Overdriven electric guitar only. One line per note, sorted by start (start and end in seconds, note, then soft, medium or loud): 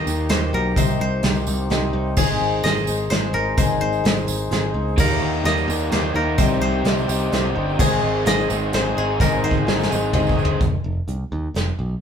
4.97 5.44 D#3 loud
4.97 5.43 G3 loud
4.97 5.22 A#3 loud
4.97 5.21 D#4 loud
4.97 5.19 G4 medium
5.20 5.43 A#3 medium
5.20 5.45 D#4 medium
5.20 5.46 G4 medium
5.43 5.68 G3 medium
5.43 5.68 A#3 medium
5.43 5.68 D#4 medium
5.43 5.66 G4 medium
5.67 6.16 D#3 medium
5.67 5.89 G3 medium
5.67 5.90 A#3 medium
5.67 5.92 D#4 medium
5.67 5.92 G4 medium
5.90 6.36 G3 medium
5.90 6.16 A#3 medium
5.90 6.15 D#4 medium
5.90 6.13 G4 medium
6.14 6.38 A#3 medium
6.14 6.39 D#4 medium
6.14 6.37 G4 medium
6.37 6.85 C3 medium
6.37 6.83 G3 loud
6.37 6.63 C4 loud
6.37 6.62 D#4 loud
6.37 6.60 G4 loud
6.61 6.85 C4 medium
6.61 6.86 D#4 medium
6.61 6.86 G4 medium
6.84 7.09 G3 medium
6.84 7.09 C4 medium
6.84 7.09 D#4 medium
6.84 7.07 G4 medium
7.08 7.57 C3 medium
7.08 7.30 G3 medium
7.08 7.32 C4 medium
7.08 7.33 D#4 medium
7.08 7.33 G4 loud
7.31 7.77 G3 medium
7.31 7.58 C4 medium
7.31 7.56 D#4 medium
7.31 7.54 G4 medium
7.55 7.80 C4 medium
7.55 7.80 D#4 medium
7.55 7.77 G4 medium
7.78 8.52 G#2 loud
7.78 8.26 D#3 loud
7.78 8.05 G#3 loud
7.78 8.04 C4 loud
7.78 8.03 D#4 loud
7.78 8.01 G#4 loud
8.02 8.25 G#3 medium
8.02 8.26 C4 medium
8.02 8.27 D#4 medium
8.02 8.28 G#4 medium
8.25 8.50 G#3 medium
8.25 8.50 C4 medium
8.25 8.49 D#4 medium
8.25 8.48 G#4 medium
8.49 8.98 G#2 medium
8.49 8.97 D#3 medium
8.49 8.71 G#3 medium
8.49 8.73 C4 medium
8.49 8.73 D#4 medium
8.49 8.74 G#4 medium
8.72 8.98 G#3 medium
8.72 8.97 C4 medium
8.72 8.95 D#4 medium
8.72 8.95 G#4 medium
8.95 9.19 G#3 medium
8.95 9.20 C4 medium
8.95 9.20 D#4 medium
8.95 9.21 G#4 medium
9.19 9.67 G#2 medium
9.19 9.67 D#3 loud
9.19 9.45 G#3 loud
9.19 9.44 C4 medium
9.19 9.43 D#4 loud
9.19 9.42 G#4 loud
9.43 9.65 G#3 medium
9.43 9.66 C4 medium
9.43 9.67 D#4 medium
9.43 9.68 G#4 medium
9.66 9.90 G#3 medium
9.66 9.90 C4 medium
9.66 9.89 D#4 medium
9.66 9.88 G#4 medium
9.89 10.38 G#2 medium
9.89 10.38 D#3 medium
9.89 10.12 G#3 medium
9.89 10.13 C4 medium
9.89 10.14 D#4 medium
9.89 10.15 G#4 medium
10.13 10.38 G#3 medium
10.13 10.37 C4 medium
10.13 10.36 D#4 medium
10.13 10.35 G#4 medium
10.36 10.60 G#3 medium
10.36 10.60 C4 medium
10.36 10.59 D#4 medium
10.36 10.59 G#4 medium